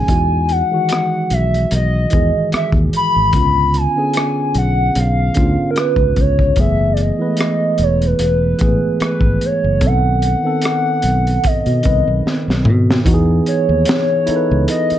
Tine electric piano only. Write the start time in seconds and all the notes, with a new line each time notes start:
Already playing: C#3 D#3 A3 C#4 G#4
0.07 E3 G#3 D#4 F#4
0.71 D#3 E3 G#3 F#4
2.11 D#3 E3 G#3 G#4
3.33 D3 B3 C#4 F4
3.96 D3 B3 C#4 G#4
5.34 D3 B3 C#4 F4
6.56 E3 A3 B3 G#4
7.19 E3 G#3 B3 B4
7.27 A3
8.58 E3 G#3 B3 G#4
8.66 A3
9.80 D#3 B3 C4 A4
10.43 D#3 B3 C4 A4
11.83 D#3 B3 C4 B4
13.04 E3 B3 D#4 F#4
13.14 G#4
14.26 B3 D#4 E4 A4
14.36 B4